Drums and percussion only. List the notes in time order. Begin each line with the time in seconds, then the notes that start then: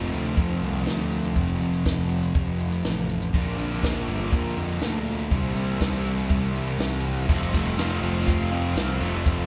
0.13 closed hi-hat
0.25 closed hi-hat
0.37 kick, closed hi-hat
0.62 closed hi-hat
0.86 snare, closed hi-hat
1.11 closed hi-hat
1.23 closed hi-hat
1.36 kick, closed hi-hat
1.61 closed hi-hat
1.73 closed hi-hat
1.86 kick, snare, closed hi-hat
2.10 closed hi-hat
2.23 closed hi-hat
2.35 kick, closed hi-hat
2.60 closed hi-hat
2.72 closed hi-hat
2.84 snare, closed hi-hat
3.09 closed hi-hat
3.22 closed hi-hat
3.34 kick, closed hi-hat
3.59 closed hi-hat
3.71 snare, closed hi-hat
3.83 kick, snare, closed hi-hat
4.08 closed hi-hat
4.21 closed hi-hat
4.32 kick, closed hi-hat
4.57 closed hi-hat
4.81 snare, closed hi-hat
5.07 closed hi-hat
5.20 closed hi-hat
5.31 kick, closed hi-hat
5.56 closed hi-hat
5.69 closed hi-hat
5.81 kick, snare, closed hi-hat
6.05 closed hi-hat
6.18 closed hi-hat
6.30 kick, closed hi-hat
6.55 closed hi-hat
6.68 closed hi-hat
6.80 snare, closed hi-hat
7.05 closed hi-hat
7.17 closed hi-hat
7.29 kick, crash, tambourine
7.42 closed hi-hat
7.54 kick, closed hi-hat, tambourine
7.66 closed hi-hat
7.78 snare, closed hi-hat, tambourine
7.91 closed hi-hat
8.03 closed hi-hat, tambourine
8.28 kick, closed hi-hat
8.53 closed hi-hat
8.65 closed hi-hat
8.76 snare, closed hi-hat, tambourine
9.01 snare, closed hi-hat, tambourine
9.14 closed hi-hat
9.26 kick, closed hi-hat, tambourine
9.39 closed hi-hat